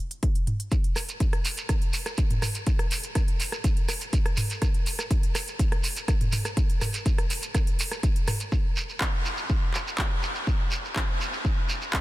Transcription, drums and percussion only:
0.11 closed hi-hat
0.23 kick, closed hi-hat
0.35 closed hi-hat
0.47 closed hi-hat, mid tom
0.60 closed hi-hat
0.71 kick, closed hi-hat, shekere
0.84 closed hi-hat
0.96 cross-stick, open hi-hat, shekere
1.09 closed hi-hat, shekere
1.20 kick, closed hi-hat, shekere
1.33 cross-stick, closed hi-hat
1.45 open hi-hat, shekere
1.57 closed hi-hat, shekere
1.69 kick, cross-stick, closed hi-hat, shekere
1.82 closed hi-hat
1.93 open hi-hat, shekere
2.06 cross-stick, closed hi-hat, shekere
2.17 kick, closed hi-hat, shekere
2.30 closed hi-hat, mid tom
2.42 cross-stick, mid tom, open hi-hat, shekere
2.54 closed hi-hat, shekere
2.67 kick, closed hi-hat, shekere
2.79 cross-stick, closed hi-hat
2.91 open hi-hat, shekere
3.03 closed hi-hat, shekere
3.15 kick, cross-stick, closed hi-hat, shekere
3.28 closed hi-hat
3.40 open hi-hat, shekere
3.52 cross-stick, closed hi-hat, shekere
3.64 kick, closed hi-hat, shekere
3.77 closed hi-hat
3.89 cross-stick, open hi-hat, shekere
4.01 closed hi-hat, shekere
4.13 kick, closed hi-hat, shekere
4.26 cross-stick, closed hi-hat
4.37 mid tom, open hi-hat, shekere
4.50 closed hi-hat, shekere
4.62 kick, cross-stick, closed hi-hat, shekere
4.74 closed hi-hat
4.86 open hi-hat, shekere
4.99 cross-stick, closed hi-hat, shekere
5.11 kick, closed hi-hat, shekere
5.23 closed hi-hat
5.35 cross-stick, open hi-hat, shekere
5.48 closed hi-hat, shekere
5.59 kick, closed hi-hat, shekere
5.72 cross-stick, closed hi-hat
5.83 open hi-hat, shekere
5.96 closed hi-hat, shekere
6.08 kick, cross-stick, closed hi-hat, shekere
6.21 closed hi-hat, mid tom
6.32 mid tom, open hi-hat, shekere
6.45 cross-stick, closed hi-hat, shekere
6.57 kick, closed hi-hat, shekere
6.70 closed hi-hat
6.81 cross-stick, mid tom, open hi-hat, shekere
6.94 closed hi-hat, shekere
7.06 kick, closed hi-hat, shekere
7.18 cross-stick, closed hi-hat
7.30 open hi-hat, shekere
7.42 closed hi-hat, shekere
7.55 kick, cross-stick, closed hi-hat, shekere
7.67 closed hi-hat
7.79 open hi-hat, shekere
7.92 cross-stick, closed hi-hat, shekere
8.03 kick, closed hi-hat, shekere
8.16 closed hi-hat
8.27 cross-stick, mid tom, open hi-hat, shekere
8.40 closed hi-hat, shekere
8.52 kick, shekere
8.77 shekere
8.89 shekere
9.01 kick, clap, shekere
9.25 shekere
9.37 shekere
9.49 kick, shekere
9.74 clap, shekere
9.87 shekere
9.98 kick, clap, shekere
10.23 shekere
10.35 shekere
10.47 kick, shekere
10.71 shekere
10.85 shekere
10.96 kick, clap, shekere
11.21 shekere
11.33 shekere
11.45 kick, shekere
11.69 shekere
11.81 shekere
11.93 kick, clap, shekere

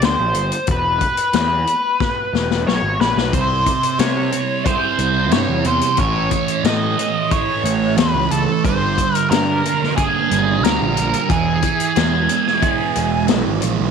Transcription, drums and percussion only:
0.02 snare, closed hi-hat
0.34 closed hi-hat
0.52 closed hi-hat
0.67 kick, closed hi-hat
1.01 kick, closed hi-hat
1.17 closed hi-hat
1.33 snare, closed hi-hat
1.67 closed hi-hat
2.00 kick, snare
2.35 snare
2.51 snare
2.68 snare
3.01 snare
3.18 snare
3.33 kick, closed hi-hat
3.66 kick, closed hi-hat
3.83 closed hi-hat
3.99 snare, closed hi-hat
4.32 closed hi-hat
4.66 kick, closed hi-hat
4.99 closed hi-hat
5.31 snare, closed hi-hat
5.64 closed hi-hat
5.81 closed hi-hat
5.97 kick, closed hi-hat
6.31 kick, closed hi-hat
6.48 closed hi-hat
6.64 snare, closed hi-hat
6.99 closed hi-hat
7.31 kick, closed hi-hat
7.65 closed hi-hat
7.97 snare, closed hi-hat
8.31 closed hi-hat
8.65 kick, closed hi-hat
8.98 kick, closed hi-hat
9.15 closed hi-hat
9.31 snare, closed hi-hat
9.65 closed hi-hat
9.84 snare
9.97 kick, closed hi-hat
10.31 closed hi-hat
10.64 snare, closed hi-hat
10.97 closed hi-hat
11.13 closed hi-hat
11.30 kick, closed hi-hat
11.62 kick, closed hi-hat
11.80 closed hi-hat
11.96 snare, closed hi-hat
12.29 closed hi-hat
12.47 snare
12.62 kick, closed hi-hat
12.95 closed hi-hat
13.28 snare, closed hi-hat
13.62 closed hi-hat

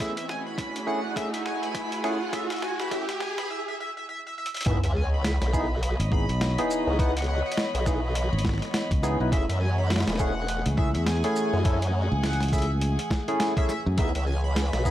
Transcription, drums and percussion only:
0.00 kick, snare, closed hi-hat
0.17 closed hi-hat
0.29 snare
0.58 kick, snare, closed hi-hat
0.76 closed hi-hat
1.16 kick, snare, closed hi-hat
1.34 closed hi-hat
1.46 snare
1.63 closed hi-hat
1.75 kick, snare, closed hi-hat
1.92 closed hi-hat
2.04 snare
2.33 kick, snare, closed hi-hat
2.50 snare, closed hi-hat
2.52 closed hi-hat
2.56 closed hi-hat
2.58 closed hi-hat
2.60 snare, closed hi-hat
2.80 snare
2.91 kick, snare, closed hi-hat
3.09 snare, closed hi-hat
3.20 snare
3.38 snare, closed hi-hat
4.46 closed hi-hat
4.54 closed hi-hat
4.57 closed hi-hat
4.61 closed hi-hat
4.63 closed hi-hat
4.65 kick, closed hi-hat
4.66 closed hi-hat
4.84 closed hi-hat
5.24 snare, closed hi-hat
5.42 snare, closed hi-hat
5.53 kick, shaker
5.83 closed hi-hat
6.00 closed hi-hat
6.12 kick
6.29 closed hi-hat
6.41 snare, closed hi-hat
6.58 closed hi-hat
6.71 shaker
6.99 kick, closed hi-hat
7.17 closed hi-hat
7.19 closed hi-hat
7.22 closed hi-hat
7.24 closed hi-hat
7.26 closed hi-hat
7.52 closed hi-hat
7.58 snare
7.75 closed hi-hat
7.86 kick, snare, shaker
8.15 closed hi-hat
8.39 closed hi-hat
8.45 kick, snare
8.49 snare
8.53 snare
8.58 snare
8.62 snare, closed hi-hat
8.65 snare
8.68 snare
8.71 snare
8.74 snare, closed hi-hat
8.91 kick, closed hi-hat
9.03 snare, shaker
9.32 kick, closed hi-hat
9.50 closed hi-hat
9.90 snare, closed hi-hat
9.96 snare
10.00 snare
10.08 snare, closed hi-hat
10.10 snare
10.16 snare, shaker
10.20 kick
10.48 closed hi-hat
10.66 closed hi-hat
10.78 kick
10.95 closed hi-hat
11.07 snare, closed hi-hat
11.24 closed hi-hat
11.36 shaker
11.65 kick, closed hi-hat
11.82 closed hi-hat
12.23 snare, closed hi-hat
12.33 closed hi-hat
12.40 snare, closed hi-hat
12.43 closed hi-hat
12.48 kick, closed hi-hat
12.53 closed hi-hat, shaker
12.58 closed hi-hat
12.62 closed hi-hat
12.81 closed hi-hat
12.99 closed hi-hat
13.11 kick, snare
13.28 closed hi-hat
13.40 snare, closed hi-hat
13.57 kick, closed hi-hat
13.69 snare, shaker
13.98 kick, closed hi-hat
14.15 closed hi-hat
14.56 snare, closed hi-hat
14.73 snare, closed hi-hat
14.85 kick, shaker

